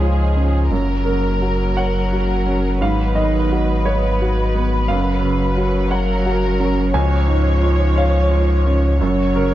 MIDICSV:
0, 0, Header, 1, 6, 480
1, 0, Start_track
1, 0, Key_signature, 6, "major"
1, 0, Tempo, 707547
1, 477, Time_signature, 6, 3, 24, 8
1, 1445, Tempo, 689655
1, 6603, End_track
2, 0, Start_track
2, 0, Title_t, "Violin section"
2, 0, Program_c, 0, 48
2, 0, Note_on_c, 0, 68, 42
2, 452, Note_off_c, 0, 68, 0
2, 487, Note_on_c, 0, 70, 48
2, 1903, Note_off_c, 0, 70, 0
2, 1932, Note_on_c, 0, 71, 49
2, 4057, Note_off_c, 0, 71, 0
2, 4080, Note_on_c, 0, 70, 52
2, 4792, Note_on_c, 0, 73, 59
2, 4796, Note_off_c, 0, 70, 0
2, 6208, Note_off_c, 0, 73, 0
2, 6235, Note_on_c, 0, 73, 54
2, 6603, Note_off_c, 0, 73, 0
2, 6603, End_track
3, 0, Start_track
3, 0, Title_t, "Upright piano"
3, 0, Program_c, 1, 0
3, 0, Control_c, 1, 64, 127
3, 0, Note_on_c, 1, 37, 43
3, 0, Note_on_c, 1, 44, 33
3, 0, Note_on_c, 1, 65, 34
3, 0, Note_on_c, 1, 73, 41
3, 0, Note_on_c, 1, 75, 55
3, 0, Note_on_c, 1, 77, 58
3, 9, Note_off_c, 1, 65, 0
3, 9, Note_on_c, 1, 65, 39
3, 146, Note_off_c, 1, 73, 0
3, 248, Note_on_c, 1, 61, 35
3, 384, Note_off_c, 1, 65, 0
3, 451, Note_off_c, 1, 37, 0
3, 481, Note_off_c, 1, 61, 0
3, 483, Note_on_c, 1, 42, 49
3, 490, Control_c, 1, 64, 0
3, 491, Note_off_c, 1, 77, 0
3, 493, Note_off_c, 1, 44, 0
3, 497, Note_off_c, 1, 75, 0
3, 624, Control_c, 1, 64, 127
3, 709, Note_on_c, 1, 70, 54
3, 717, Note_on_c, 1, 49, 37
3, 962, Note_on_c, 1, 66, 38
3, 1110, Note_off_c, 1, 49, 0
3, 1176, Note_off_c, 1, 70, 0
3, 1200, Note_on_c, 1, 78, 62
3, 1207, Note_on_c, 1, 73, 43
3, 1351, Note_off_c, 1, 66, 0
3, 1442, Note_on_c, 1, 66, 40
3, 1589, Note_off_c, 1, 73, 0
3, 1679, Note_on_c, 1, 61, 41
3, 1827, Note_off_c, 1, 66, 0
3, 1894, Note_off_c, 1, 78, 0
3, 1901, Note_off_c, 1, 42, 0
3, 1919, Note_on_c, 1, 44, 53
3, 1923, Note_off_c, 1, 61, 0
3, 1924, Note_on_c, 1, 77, 70
3, 1938, Control_c, 1, 64, 0
3, 2038, Control_c, 1, 64, 127
3, 2150, Note_off_c, 1, 77, 0
3, 2157, Note_on_c, 1, 75, 65
3, 2162, Note_on_c, 1, 51, 39
3, 2409, Note_on_c, 1, 66, 42
3, 2552, Note_off_c, 1, 51, 0
3, 2618, Note_off_c, 1, 75, 0
3, 2645, Note_on_c, 1, 73, 69
3, 2648, Note_on_c, 1, 71, 47
3, 2796, Note_off_c, 1, 66, 0
3, 2898, Note_on_c, 1, 66, 44
3, 3033, Note_off_c, 1, 71, 0
3, 3130, Note_on_c, 1, 59, 43
3, 3274, Note_off_c, 1, 66, 0
3, 3334, Note_off_c, 1, 44, 0
3, 3335, Note_off_c, 1, 73, 0
3, 3361, Note_on_c, 1, 77, 78
3, 3366, Note_off_c, 1, 59, 0
3, 3366, Note_on_c, 1, 42, 58
3, 3379, Control_c, 1, 64, 0
3, 3506, Control_c, 1, 64, 127
3, 3601, Note_on_c, 1, 49, 40
3, 3841, Note_on_c, 1, 66, 43
3, 3985, Note_off_c, 1, 49, 0
3, 4051, Note_off_c, 1, 77, 0
3, 4075, Note_on_c, 1, 78, 61
3, 4077, Note_on_c, 1, 73, 51
3, 4223, Note_off_c, 1, 66, 0
3, 4319, Note_on_c, 1, 66, 49
3, 4459, Note_off_c, 1, 73, 0
3, 4555, Note_on_c, 1, 61, 48
3, 4700, Note_off_c, 1, 66, 0
3, 4765, Note_off_c, 1, 78, 0
3, 4769, Note_off_c, 1, 42, 0
3, 4792, Note_on_c, 1, 37, 63
3, 4793, Note_on_c, 1, 80, 80
3, 4796, Note_off_c, 1, 61, 0
3, 4810, Control_c, 1, 64, 0
3, 4916, Control_c, 1, 64, 127
3, 5027, Note_on_c, 1, 44, 43
3, 5269, Note_on_c, 1, 65, 43
3, 5415, Note_off_c, 1, 44, 0
3, 5486, Note_off_c, 1, 80, 0
3, 5504, Note_on_c, 1, 73, 52
3, 5514, Note_on_c, 1, 77, 72
3, 5656, Note_off_c, 1, 65, 0
3, 5746, Note_on_c, 1, 65, 48
3, 5893, Note_off_c, 1, 73, 0
3, 5990, Note_on_c, 1, 61, 50
3, 6136, Note_off_c, 1, 65, 0
3, 6207, Note_off_c, 1, 37, 0
3, 6209, Note_off_c, 1, 77, 0
3, 6231, Note_on_c, 1, 42, 61
3, 6235, Note_off_c, 1, 61, 0
3, 6251, Control_c, 1, 64, 0
3, 6348, Control_c, 1, 64, 127
3, 6476, Note_on_c, 1, 70, 68
3, 6481, Note_on_c, 1, 49, 41
3, 6603, Note_off_c, 1, 42, 0
3, 6603, Note_off_c, 1, 49, 0
3, 6603, Note_off_c, 1, 70, 0
3, 6603, End_track
4, 0, Start_track
4, 0, Title_t, "Analog synth pad"
4, 0, Program_c, 2, 89
4, 0, Note_on_c, 2, 56, 48
4, 0, Note_on_c, 2, 65, 50
4, 0, Note_on_c, 2, 73, 46
4, 470, Note_on_c, 2, 58, 52
4, 470, Note_on_c, 2, 66, 54
4, 476, Note_off_c, 2, 56, 0
4, 479, Note_off_c, 2, 65, 0
4, 1897, Note_off_c, 2, 73, 0
4, 1922, Note_off_c, 2, 58, 0
4, 1922, Note_on_c, 2, 59, 51
4, 1925, Note_on_c, 2, 75, 54
4, 3364, Note_off_c, 2, 59, 0
4, 3365, Note_off_c, 2, 75, 0
4, 3365, Note_on_c, 2, 61, 54
4, 3365, Note_on_c, 2, 73, 54
4, 4774, Note_off_c, 2, 61, 0
4, 4780, Note_on_c, 2, 65, 53
4, 4782, Note_on_c, 2, 61, 56
4, 4793, Note_off_c, 2, 66, 0
4, 6229, Note_off_c, 2, 65, 0
4, 6239, Note_on_c, 2, 66, 54
4, 6603, Note_off_c, 2, 61, 0
4, 6603, Note_off_c, 2, 66, 0
4, 6603, Note_off_c, 2, 73, 0
4, 6603, End_track
5, 0, Start_track
5, 0, Title_t, "Cello"
5, 0, Program_c, 3, 42
5, 0, Note_on_c, 3, 53, 47
5, 476, Note_on_c, 3, 54, 47
5, 486, Note_off_c, 3, 53, 0
5, 3365, Note_off_c, 3, 54, 0
5, 3370, Note_on_c, 3, 54, 57
5, 4806, Note_on_c, 3, 53, 60
5, 4816, Note_off_c, 3, 54, 0
5, 6230, Note_off_c, 3, 53, 0
5, 6234, Note_on_c, 3, 54, 58
5, 6603, Note_off_c, 3, 54, 0
5, 6603, End_track
6, 0, Start_track
6, 0, Title_t, "Sub bass"
6, 0, Program_c, 4, 38
6, 0, Note_on_c, 4, 37, 53
6, 474, Note_on_c, 4, 30, 59
6, 485, Note_off_c, 4, 37, 0
6, 1926, Note_on_c, 4, 32, 62
6, 1936, Note_off_c, 4, 30, 0
6, 3366, Note_on_c, 4, 30, 60
6, 3376, Note_off_c, 4, 32, 0
6, 4794, Note_on_c, 4, 37, 59
6, 4804, Note_off_c, 4, 30, 0
6, 6237, Note_on_c, 4, 30, 59
6, 6247, Note_off_c, 4, 37, 0
6, 6603, Note_off_c, 4, 30, 0
6, 6603, End_track
0, 0, End_of_file